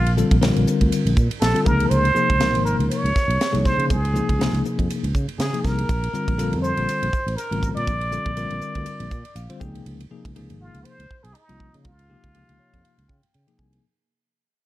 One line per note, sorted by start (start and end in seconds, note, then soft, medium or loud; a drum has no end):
0.00 0.22 A#1 medium
0.00 0.13 F4 medium
0.07 ride medium
0.17 0.35 D3 medium
0.17 0.35 G3 medium
0.17 0.35 C4 medium
0.17 0.35 F4 medium
0.17 0.35 A4 medium
0.17 hi-hat pedal medium
0.31 0.50 A#1 medium
0.31 kick medium
0.31 ride medium
0.41 1.09 D3 medium
0.41 1.09 G3 medium
0.41 1.09 C4 medium
0.41 1.09 F4 medium
0.41 1.09 A#4 medium
0.41 snare medium
0.41 hi-hat pedal medium
0.41 ride medium
0.56 0.64 A#1 medium
0.56 ride medium
0.67 hi-hat pedal medium
0.81 0.89 D2 medium
0.81 kick medium
0.81 ride medium
0.92 hi-hat pedal medium
0.92 ride medium
1.05 1.14 A#1 medium
1.05 ride medium
1.17 1.27 A#2 medium
1.17 kick medium
1.17 hi-hat pedal medium
1.31 ride medium
1.40 1.52 A#1 medium
1.40 1.67 A4 medium
1.40 snare medium
1.40 hi-hat pedal medium
1.40 ride medium
1.54 1.66 D3 medium
1.54 1.66 G3 medium
1.54 1.66 C4 medium
1.54 1.66 F4 medium
1.54 1.66 A4 medium
1.54 ride medium
1.65 1.85 C#2 medium
1.65 2.07 C3 medium
1.65 2.07 F3 medium
1.65 2.07 A#3 medium
1.65 2.07 D#4 medium
1.65 2.06 G#4 medium
1.65 1.91 A#4 medium
1.65 kick medium
1.65 hi-hat pedal medium
1.80 ride medium
1.90 2.10 C#2 medium
1.90 2.64 C5 medium
1.90 hi-hat pedal medium
1.90 ride medium
2.05 ride medium
2.15 2.33 C3 medium
2.15 2.33 F3 medium
2.15 2.33 A#3 medium
2.15 2.33 D#4 medium
2.15 2.33 G#4 medium
2.15 hi-hat pedal medium
2.30 2.55 C#2 medium
2.30 kick medium
2.30 ride medium
2.40 3.08 C3 medium
2.40 3.08 F3 medium
2.40 3.08 A#3 medium
2.40 3.08 D#4 medium
2.40 3.08 A#4 medium
2.40 snare medium
2.40 hi-hat pedal medium
2.40 ride medium
2.55 2.74 G#1 medium
2.55 ride medium
2.65 2.76 A#4 medium
2.65 hi-hat pedal medium
2.79 2.88 C#2 medium
2.79 ride soft
2.90 3.67 C#5 medium
2.90 hi-hat pedal medium
2.90 ride medium
3.04 3.12 C#2 medium
3.04 ride soft
3.16 kick medium
3.16 snare soft
3.16 hi-hat pedal medium
3.28 3.37 C2 medium
3.28 ride medium
3.41 snare medium
3.41 hi-hat pedal medium
3.41 ride medium
3.52 3.73 C2 medium
3.52 3.94 C3 medium
3.52 3.94 F3 medium
3.52 3.94 A#3 medium
3.52 3.94 D#4 medium
3.52 3.94 G#4 medium
3.52 ride medium
3.65 3.92 C5 medium
3.65 kick medium
3.65 snare soft
3.65 hi-hat pedal medium
3.78 3.92 C#3 medium
3.78 ride medium
3.90 4.20 C#2 medium
3.90 4.64 G#4 medium
3.90 kick medium
3.90 hi-hat pedal medium
3.90 ride medium
4.05 ride medium
4.13 4.32 C3 medium
4.13 4.32 F3 medium
4.13 4.32 A#3 medium
4.13 4.32 D#4 medium
4.13 4.32 G#4 medium
4.13 hi-hat pedal medium
4.29 4.48 C#2 medium
4.29 kick medium
4.29 ride medium
4.39 5.07 C3 medium
4.39 5.07 F3 medium
4.39 5.07 A#3 medium
4.39 5.07 D#4 medium
4.39 5.07 G#4 medium
4.39 snare medium
4.39 hi-hat pedal medium
4.39 ride medium
4.53 4.62 C#2 medium
4.53 ride soft
4.65 hi-hat pedal medium
4.79 4.87 F2 medium
4.79 kick medium
4.79 ride medium
4.90 hi-hat pedal medium
4.90 ride medium
5.04 5.12 C#2 medium
5.04 ride medium
5.15 5.25 C#3 medium
5.15 kick medium
5.15 hi-hat pedal medium
5.28 muted fretless electric bass stroke soft
5.28 ride medium
5.39 5.49 C#3 medium
5.39 5.66 G#4 medium
5.39 snare medium
5.39 hi-hat pedal medium
5.39 ride medium
5.53 5.89 C3 medium
5.53 5.89 F3 medium
5.53 5.89 A#3 medium
5.53 5.89 D#4 medium
5.53 5.89 G#4 medium
5.53 ride medium
5.65 5.83 C2 medium
5.65 6.61 A#4 medium
5.65 kick medium
5.65 snare soft
5.65 hi-hat pedal medium
5.79 ride medium
5.89 6.08 A#1 medium
5.89 kick medium
5.89 hi-hat pedal medium
5.89 ride medium
6.04 ride medium
6.13 6.31 D3 medium
6.13 6.31 G3 medium
6.13 6.31 C4 medium
6.13 6.31 F4 medium
6.13 6.31 A#4 medium
6.13 muted fretless electric bass stroke soft
6.13 hi-hat pedal medium
6.28 6.54 A#1 medium
6.28 kick medium
6.28 ride medium
6.38 7.06 D3 medium
6.38 7.06 G3 medium
6.38 7.06 C4 medium
6.38 7.06 F4 medium
6.38 7.06 A4 medium
6.38 hi-hat pedal medium
6.38 ride medium
6.53 6.72 F2 medium
6.53 ride medium
6.62 7.38 C5 medium
6.62 hi-hat pedal medium
6.77 6.86 A#1 medium
6.77 ride soft
6.89 hi-hat pedal medium
6.89 ride medium
7.03 7.11 A#1 medium
7.03 ride medium
7.13 muted fretless electric bass stroke soft
7.13 kick medium
7.13 hi-hat pedal medium
7.27 7.35 A1 medium
7.27 ride medium
7.36 7.74 A#4 medium
7.36 hi-hat pedal medium
7.36 ride medium
7.51 7.70 A1 medium
7.51 7.92 D3 medium
7.51 7.92 G3 soft
7.51 7.92 C4 medium
7.51 7.92 F4 medium
7.51 7.92 A#4 medium
7.51 ride soft
7.63 kick medium
7.63 hi-hat pedal medium
7.75 7.89 A#2 medium
7.75 9.56 D5 medium
7.75 ride soft
7.87 8.17 A#1 medium
7.87 kick medium
7.87 hi-hat pedal medium
7.87 ride medium
8.01 ride soft
8.12 8.29 D3 medium
8.12 8.30 G3 medium
8.12 8.30 C4 medium
8.12 8.30 F4 medium
8.12 8.30 A4 medium
8.12 hi-hat pedal medium
8.26 8.45 A#1 medium
8.26 kick medium
8.26 ride soft
8.37 9.04 D3 medium
8.37 9.05 G3 medium
8.37 9.05 C4 medium
8.37 9.05 F4 medium
8.37 9.05 A#4 medium
8.37 hi-hat pedal medium
8.37 ride medium
8.50 8.59 A#1 medium
8.50 ride soft
8.61 hi-hat pedal medium
8.75 8.84 D2 medium
8.75 kick medium
8.75 ride soft
8.86 hi-hat pedal medium
8.86 ride medium
9.00 9.09 A#1 medium
9.00 ride medium
9.11 9.22 A#2 medium
9.11 9.34 D5 medium
9.11 kick medium
9.11 hi-hat pedal medium
9.25 ride soft
9.36 9.47 A#1 medium
9.36 9.59 F5 medium
9.36 hi-hat pedal medium
9.36 ride medium
9.49 9.61 D3 medium
9.49 9.61 G3 medium
9.49 9.61 C4 medium
9.49 9.61 F4 medium
9.49 9.61 C5 medium
9.49 ride medium
9.60 9.80 C#2 medium
9.60 10.02 C3 medium
9.60 10.02 F3 medium
9.60 10.02 A#3 medium
9.60 10.02 D#4 medium
9.60 10.02 G#4 medium
9.60 9.84 G5 medium
9.60 kick medium
9.60 hi-hat pedal medium
9.75 ride soft
9.86 10.05 C#2 medium
9.86 ride medium
10.00 ride medium
10.11 10.29 C3 medium
10.11 10.28 F3 medium
10.11 10.29 A#3 medium
10.11 10.29 D#4 medium
10.11 10.29 G#4 medium
10.11 muted fretless electric bass stroke soft
10.25 10.52 C#2 medium
10.25 kick medium
10.25 ride medium
10.36 11.03 C3 medium
10.36 11.04 F3 medium
10.36 11.03 A#3 medium
10.36 11.03 D#4 medium
10.36 11.03 G#4 medium
10.36 ride medium
10.50 10.69 G#1 medium
10.50 ride soft
10.61 10.86 F4 medium
10.74 10.83 C#2 medium
10.74 ride soft
10.85 11.25 C5 medium
10.85 ride medium
10.99 11.08 C#2 medium
10.99 ride medium
11.11 muted fretless electric bass stroke soft
11.11 kick medium
11.23 11.32 C2 medium
11.23 11.36 G#4 medium
11.23 ride medium
11.34 11.83 D#4 medium
11.34 ride medium
11.49 11.68 C2 medium
11.49 11.90 C3 medium
11.49 11.90 F3 soft
11.49 11.90 A#3 soft
11.49 11.90 D#4 medium
11.49 11.90 F4 medium
11.49 ride soft
11.60 kick medium
11.74 11.87 C#3 medium
11.74 ride soft
11.84 12.15 C#2 medium
11.84 13.30 F4 medium
11.84 kick medium
11.84 ride medium
11.99 ride soft
12.09 12.27 C3 medium
12.09 12.27 F3 medium
12.09 12.27 A#3 soft
12.09 12.27 D#4 medium
12.09 12.27 G4 medium
12.24 12.43 C#2 medium
12.24 kick medium
12.24 ride soft
12.35 13.03 C3 medium
12.35 13.03 F3 medium
12.35 13.03 A#3 soft
12.35 13.03 D#4 soft
12.35 13.03 G4 medium
12.35 ride medium
12.49 12.57 C#2 medium
12.49 ride soft
12.59 12.83 C#5 medium
12.74 12.82 F2 medium
12.74 kick medium
12.74 ride soft
12.84 13.07 F5 medium
12.84 ride medium
12.98 13.07 C#2 medium
12.98 ride medium
13.08 13.20 C#3 medium
13.08 13.32 G5 medium
13.08 kick medium
13.23 muted fretless electric bass stroke soft
13.23 ride soft
13.34 13.45 C#3 medium
13.34 13.57 G5 soft
13.34 ride medium
13.47 13.84 C3 medium
13.47 13.84 F3 medium
13.47 13.84 A#3 medium
13.47 13.84 D#4 medium
13.47 13.84 G#4 medium
13.47 ride soft
13.58 13.78 C2 medium
13.58 13.82 G#5 medium
13.58 kick medium
13.73 ride soft